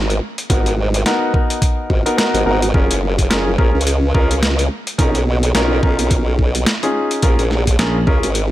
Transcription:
Already playing: G#1
0.10 closed hi-hat
0.38 closed hi-hat
0.50 G#1 B3 D#4 F#4 A#4, kick, closed hi-hat
0.66 closed hi-hat
0.94 closed hi-hat
1.06 B3 D#4 F#4 A#4, snare, closed hi-hat
1.34 B3 D#4 F#4 A#4, kick
1.50 closed hi-hat
1.62 kick, closed hi-hat
1.90 G#1, kick
2.06 B3 D#4 F#4 A#4, closed hi-hat
2.18 B3 D#4 F#4 A#4, snare, closed hi-hat
2.34 G#1, closed hi-hat
2.46 G#1 B3 D#4 F#4 A#4
2.62 closed hi-hat
2.74 F#1 C#4 F4 G#4 A#4, kick
2.90 F#1, closed hi-hat
3.19 kick, closed hi-hat
3.30 F#1 C#4 F4 G#4 A#4, snare, closed hi-hat
3.58 A#1 C#4 F4 G#4 A#4, kick
3.75 C#2
3.81 closed hi-hat
3.87 closed hi-hat
4.14 C#2 C#4 F4 G#4 A#4, kick
4.31 closed hi-hat
4.43 snare, closed hi-hat
4.59 closed hi-hat
4.87 closed hi-hat
4.98 B1 C#4 D#4 F4 A#4, kick, closed hi-hat
5.15 closed hi-hat
5.43 closed hi-hat
5.55 B1 C#4 D#4 F4 A#4, snare, closed hi-hat
5.83 B1 C#4 D#4 F4 A#4, kick
5.99 closed hi-hat
6.11 kick, closed hi-hat
6.39 kick
6.55 closed hi-hat
6.66 snare, closed hi-hat
6.83 C#4 D#4 F4 G#4, closed hi-hat
7.11 closed hi-hat
7.22 A#1 C#4 F4 G#4 A#4, kick, closed hi-hat
7.39 A#1, closed hi-hat
7.51 snare
7.67 kick, closed hi-hat
7.79 A#1 C#4 F4 G#4 A#4, snare, closed hi-hat
8.07 C#2 C#4 F4 G#4 A#4, kick
8.23 G#1, closed hi-hat
8.35 closed hi-hat

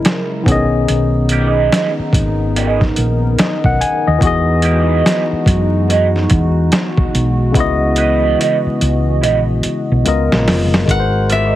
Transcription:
Already playing: C#3 F#3 G#3 C#4 E4 G#4 A#4 D#5
0.05 snare, closed hi-hat
0.43 B1 D#3 B3 D#4, kick
0.47 C#4 G#4, closed hi-hat
0.52 D#5
0.88 B1, closed hi-hat
1.29 A#3 F4 G4 D5, closed hi-hat
1.47 B3 F#4 G#4 D#5
1.73 B3 F#4 G#4 D#5, snare, closed hi-hat
1.99 muted fingered electric bass stroke
2.13 G#1 A#4, kick, closed hi-hat
2.56 B3 F#4 G#4 D#5, closed hi-hat
2.81 kick, snare
2.96 A#1, closed hi-hat
3.39 D#5, muted fingered electric bass stroke, snare, closed hi-hat
3.64 B1 F#5, kick
3.81 G#5, closed hi-hat
4.07 D#2 D#5
4.18 E2 E3 G#3 B3 D#4 F#4, kick, closed hi-hat
4.22 F#4 G#4
4.27 D#5
4.62 A#3 F4 G4 D5, closed hi-hat
4.79 B3 F#4 G#4 D#5
5.05 B3 F#4 G#4 D#5, snare, closed hi-hat
5.33 muted fingered electric bass stroke
5.46 F#2, kick, closed hi-hat
5.89 B3 F#4 G#4 D#5, closed hi-hat
6.16 snare
6.30 E2, kick, closed hi-hat
6.72 snare, closed hi-hat
6.98 kick
7.15 B1, closed hi-hat
7.52 C#2 C#3 E3 G#3 B3 D#5, kick, closed hi-hat
7.57 E4 F#4 D#5
7.96 E4 F#4 B4 D#5, closed hi-hat
8.39 E4 F#4 B4 D#5, closed hi-hat
8.66 muted fingered electric bass stroke
8.81 C#2, closed hi-hat
9.21 A#1 E4 F#4 B4 D#5, closed hi-hat
9.63 muted fingered electric bass stroke, closed hi-hat
9.92 B1
10.04 C#2 C#3 D#3 G#3 B3 F4 A#4, closed hi-hat
10.08 D#5
10.32 A#1, snare
10.48 F1, snare, open hi-hat
10.74 F#1, snare
10.85 G#1 D#3 G#3, kick, closed hi-hat
10.89 F#4 A#4 F#5
10.93 B4
11.00 C5
11.30 B3 F4 A4 D5 E5, closed hi-hat
11.46 C4 F#4 A#4 D#5

